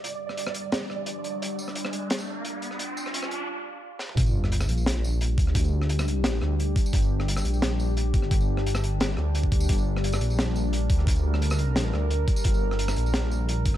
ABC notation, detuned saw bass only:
X:1
M:4/4
L:1/8
Q:1/4=174
K:Gm
V:1 name="Detuned saw bass" clef=bass
z8 | z8 | z8 | G,,,3 B,,,4 D,,- |
D,,4- D,, D,,2 z | G,,,3 B,,,4 G,,,- | G,,,4- G,,, D,,3 | G,,,3 B,,,4 D,,- |
D,,4- D,, D,,2 z | G,,,3 B,,,4 G,,, |]